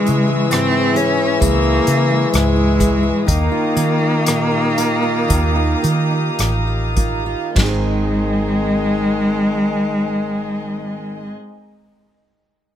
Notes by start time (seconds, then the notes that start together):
Already playing: E3 G#3 E4 G#4 E5 C#6 E6
0.05 C#3 E3, closed hi-hat
0.28 G#3
0.49 G#2 C4, cross-stick, closed hi-hat
0.72 E4
0.94 E3 C#4 G#4, closed hi-hat
1.39 C#2 C#3 G#3 A#3, kick, closed hi-hat
1.63 E4
1.86 C#3 E3, closed hi-hat
2.10 G#3
2.32 C#2 G#2 G#3, cross-stick, closed hi-hat
2.56 E4
2.78 E3 G#4, kick, closed hi-hat
3.03 E4
3.26 D#2 D#3 A#3 D#4 G4 F5 A#5 D#6, kick, closed hi-hat
3.52 F4
3.75 D#3 A#3, closed hi-hat
4.01 D#4
4.26 A#2, cross-stick, closed hi-hat
4.52 F4
4.77 A#3 F4, closed hi-hat
5.03 F4
5.27 D#2 D#3 D#4, kick, closed hi-hat
5.56 F4
5.82 D#3 A#3, closed hi-hat
6.11 D#4
6.39 A1, cross-stick, closed hi-hat
6.67 F4
6.96 A#3 F4, kick, closed hi-hat
7.26 F4
7.55 G#1 G#2 D#3 G#3 C4 D#4 G#4 D#5, kick, snare, crash
7.61 D#4 G#4